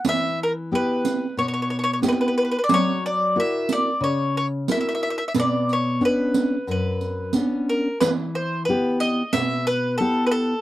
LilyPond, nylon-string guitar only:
\new Staff \with { instrumentName = "Nylon-string guitar" } { \time 4/4 \key b \minor \tempo 4 = 91 e4 <b e' g'>4 b,4 <b e' g'>4 | fis4 <e' fis' ais'>4 cis4 <e' fis' ais'>4 | b,4 <b cis' d'>4 fis,4 <b cis' d'>4 | \key e \minor e4 <b e' g'>4 b,4 <b e' g'>4 | }